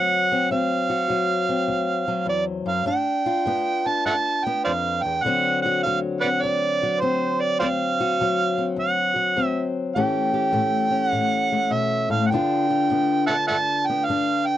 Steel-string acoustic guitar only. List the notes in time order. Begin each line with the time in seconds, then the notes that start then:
Already playing: D2 D3 F#3 C4 F#4
0.32 C4
0.51 D2 C4
0.90 F#4
1.09 D2 F#3
1.49 C4
1.68 D2
2.08 F#3
2.26 E2
2.66 F#2
2.86 G2 D4
3.26 F4
3.46 G2 B3
3.86 D4
4.06 G2
4.47 B3
4.66 F2
5.05 E2
5.25 D2 D3 F#3 C4 F#4
5.66 F#4
5.86 D2 F#3
6.24 C4
6.44 D2
6.83 F#3
7.02 D2 C4
7.62 D2 C4
8.01 F#4
8.20 D2 F#3
8.58 C4
8.76 D2
9.16 F#3
9.36 D2 C4
9.96 A2 E3 A3 C#4 G4
10.34 G4
10.53 A2 A3
10.91 C#4
11.13 A2
11.52 A3
11.71 B2
12.10 A2
12.32 G2 D3 B3 D4 F4
12.70 F4
12.90 G2 B3
13.29 D4
13.50 G2
13.90 B3
14.09 G2 D4